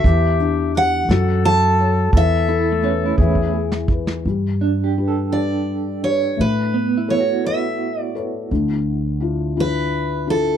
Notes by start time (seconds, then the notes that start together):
Already playing: E5
0.04 E2 E3 G4, kick, closed hi-hat
0.40 D4, closed hi-hat
0.75 G4 F#5, closed hi-hat
1.08 F#2 F#3 A4, snare, closed hi-hat
1.44 A4 A5, closed hi-hat
1.78 C#5, closed hi-hat
2.12 E2 E3 A4, kick, closed hi-hat
2.17 E5
2.47 E4 A4, closed hi-hat
2.72 A3
2.83 C#4 B4, closed hi-hat
3.06 E4
3.17 E2 E3 G#4, kick
3.35 kick
3.54 G#4
3.72 snare
3.88 B4, kick
4.07 snare
4.25 G2 G3
4.61 D4
4.84 G4
4.98 D4 G4 B4
5.08 A4
5.32 D4 G4 B4 D5
6.03 D4 G4 B4 C#5
6.37 A2 A3 B4
6.74 B3
6.97 E4
7.08 A4 B4 C#5
7.20 F#4
7.44 A4 B4 C#5 E5
8.01 D5
8.15 A4 B4 C#5
8.51 D2 D3
9.20 D4 E4 F4
9.57 D4 E4 F4 B4
10.27 D4 E4 F4 A4